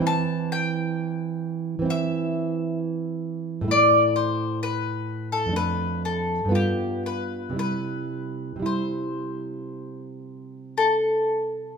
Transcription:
X:1
M:4/4
L:1/16
Q:1/4=62
K:C
V:1 name="Mandolin"
a2 g6 e4 z4 | d2 c2 B3 A B2 A2 G2 B2 | B4 c8 A4 |]
V:2 name="Nylon-string guitar"
[E,CE]8 [E,CE]8 | [A,,A,E]8 [F,,A,D]4 [G,,B,F]4 | [C,G,E]4 [C,G,E]12 |]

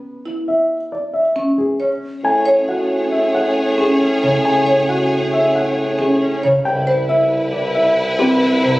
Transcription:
X:1
M:5/4
L:1/8
Q:1/4=136
K:Edor
V:1 name="Grand piano"
z2 e z d e z ^G z2 | [K:A] g z f z e f z G z2 | g z f z e f z G z2 | =g z e z d e z =G z2 |]
V:2 name="Violin section"
z8 z2 | [K:A] [Gc]8- [Gc]2- | [Gc]8- [Gc] z | [EB]8- [EB]2 |]
V:3 name="Marimba"
z E z4 C z c z | [K:A] z c F z4 C z c | z c F z4 C z c | z =c E z4 =C z c |]
V:4 name="Alto flute"
z8 z2 | [K:A] C C C C C C C C C C | C C C C C C C C C z | E E E E E E E E E E |]
V:5 name="Harp"
B,8 C2- | [K:A] C8 C C,- | C,8 C C, | z8 =C =C, |]
V:6 name="Bassoon" clef=bass
z8 z2 | [K:A] A,,8- A,,2- | A,,8- A,,2 | =C,,8- C,,2 |]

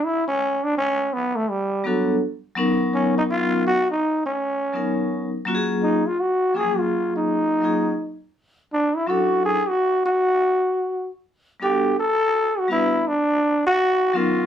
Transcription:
X:1
M:4/4
L:1/16
Q:"Swing 16ths" 1/4=83
K:Gb
V:1 name="Trombone"
_F D2 =D _D2 C =A, =G,2 _G,2 z4 | D E F2 G E2 D6 z3 | E F G2 A F2 E6 z3 | =D _F G2 A G2 G6 z3 |
=G2 =A3 ^F =E2 =D3 F3 ^E2 |]
V:2 name="Vibraphone"
z8 z2 [=G,C=D_G=A]2 z2 [_G,C_DEB]2- | [G,CDEB]4 z6 [G,CDEB]2 z2 [G,B,DFGA]2 | z4 [F,G,B,DFA]6 [G,B,DFA]2 z4 | z2 [G,D=D_F=A]2 z12 |
[=G,=B,=D^F=A]2 z4 [G,B,DF=B]2 z6 [^F,B,^C^D^A]2 |]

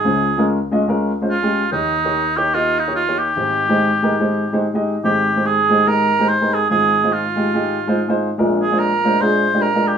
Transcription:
X:1
M:4/4
L:1/16
Q:"Swing" 1/4=144
K:Ab
V:1 name="Cor anglais"
A4 z8 F4 | E6 G2 F2 E2 F2 G2- | G12 z4 | G4 A4 B4 c2 A2 |
A4 F8- F2 z2 | z2 A2 B4 c4 B2 G2 |]
V:2 name="Upright piano"
[A,DFc]2 z [A,DFB]2 z [A,DFe] z [A,DFB]2 z [A,DFc] z [A,DFG]2 z | [B,EGd]2 z [B,EGd]2 z [B,EGd] z [B,EGe]2 z [B,EGd] z [B,EGd]2 z | [A,EGc]2 z [A,EGc]2 z [A,EGB] z [A,EGc]2 z [A,EGc] z [A,EGe]2 z | [A,EGc]2 z [A,EGc]2 z [A,EGc] z [A,EGe]2 z [A,EGc] z [A,EGB]2 z |
[A,EFc]2 z [A,EFc]2 z [A,EFG] z [A,EFG]2 z [A,EFc] z [A,EFc]2 z | [A,=DFB]2 z [A,DFc]2 z [A,DFc] z [A,DFA]2 z [A,DFG] z [A,DFB]2 z |]
V:3 name="Upright piano" clef=bass
[D,,D,]16 | [E,,E,]16 | [A,,,A,,]16 | [A,,,A,,]16 |
[A,,,A,,]16 | [B,,,B,,]16 |]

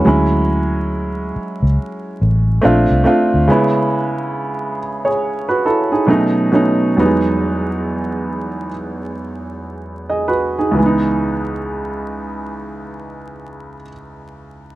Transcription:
X:1
M:4/4
L:1/16
Q:"Swing 16ths" 1/4=67
K:C#m
V:1 name="Grand piano"
z16 | z6 z [Gc]2 [FB] [EA] [DG]2 z3 | z12 z [Gd] [FB] [DG]- | [DG] z12 z3 |]
V:2 name="Grand piano"
[F,G,CE]8 z4 [A,^B,=D^E]2 [A,B,DE]2 | [C,G,B,CE]8 z4 [B,,F,A,CD]2 [B,,F,A,CD]2 | [E,,F,=G,^G,B,D]8 z8 | [C,,E,G,B,D]16 |]
V:3 name="Fingered electric bass" clef=bass
=D,,6 z C,, z2 A,,,2 ^A,,, ^B,,, z D,, | z16 | z16 | z16 |]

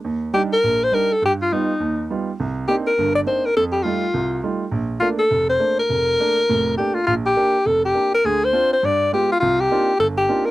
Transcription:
X:1
M:4/4
L:1/8
Q:"Swing" 1/4=205
K:Bb
V:1 name="Alto saxophone"
z2 G B2 c B A | G F ^D4 z2 | z2 G B2 d c B | A G F4 z2 |
z2 F A2 c2 B- | B6 G F | F G3 A G2 B | _A c2 c d2 G F |
F G3 A G2 B |]
V:2 name="Grand piano"
E,,2 [G,DE] z B,,,2 [G,DE] z | G,,2 [G,=B,^DF] z ^D,,2 [G,B,DF] z | C,,2 [B,CDE] z [G,,,G,,]2 [B,CDE] z | F,,2 [G,A,EF] z C,,2 [G,A,EF] z |
B,,,2 [A,B,D] z F,,,2 [A,B,D] z | F,,,2 [A,B,D] z [F,,,A,,]2 [A,B,D] z | B,,,2 [B,DG] z F,,,2 [B,DG] z | [D,,D,]2 [CDF] z G,,2 [_A,=B,FG] z |
C,,2 [B,CDEF] z G,,,2 [B,CDEF] z |]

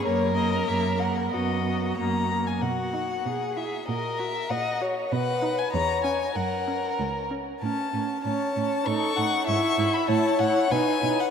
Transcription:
X:1
M:2/4
L:1/16
Q:1/4=96
K:F#mix
V:1 name="Violin"
c2 d2 e2 f2 | d4 a3 g | f6 e2 | d2 e2 f2 z2 |
f3 g a2 g2 | f4 z4 | [K:Alyd] a4 a4 | c'4 c'3 b |
a2 f2 g3 f |]
V:2 name="Violin"
A8 | F6 z2 | F4 G2 G2 | A4 d2 c2 |
B4 c4 | A6 z2 | [K:Alyd] z4 c4 | A2 f2 e4 |
c4 B4 |]
V:3 name="Viola"
A,2 A,2 A,2 A,2 | B,2 B,2 A,2 A,2 | z2 D2 z2 E2 | z2 F2 z2 F2 |
z2 D2 z2 C2 | z2 C2 z2 C2 | [K:Alyd] C2 C2 C2 C2 | D2 D2 E2 E2 |
E2 E2 D2 D2 |]
V:4 name="Cello" clef=bass
F,,4 F,,4 | F,,4 F,,4 | B,,4 B,,4 | A,,4 A,,4 |
B,,4 E,,4 | F,,4 C,,4 | [K:Alyd] A,,2 A,,2 A,,2 A,,2 | A,,2 A,,2 G,,2 G,,2 |
A,,2 A,,2 B,,2 B,,2 |]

